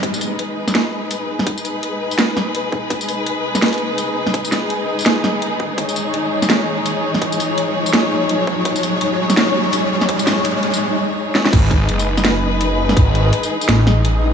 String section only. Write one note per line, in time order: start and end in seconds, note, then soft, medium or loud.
0.02 11.49 G#3 medium
0.02 11.49 D#4 medium
0.02 11.49 G#4 medium
0.02 5.76 B4 medium
5.77 11.51 C#5 medium
11.52 14.34 G#3 medium
11.52 14.34 D#4 medium
11.52 14.34 G#4 medium
11.52 14.34 B4 medium